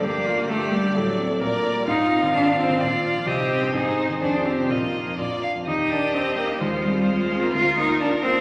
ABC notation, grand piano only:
X:1
M:2/4
L:1/16
Q:1/4=129
K:Gm
V:1 name="Grand piano"
G,, D B, D, G,, D B, D, | A,, D C A, B,, D B, G, | [K:Eb] A,, F C E, A,, F C E, | B,, F D F, C,, E C G,, |
A,, E C E, F,, F C C, | B,,, F E F,, B,,, F D F,, | E,,2 [EGB]4 [EGB]2 | E,,2 [CFA]4 [CFA]2 |
D,,2 [B,FB]4 [B,FB]2 |]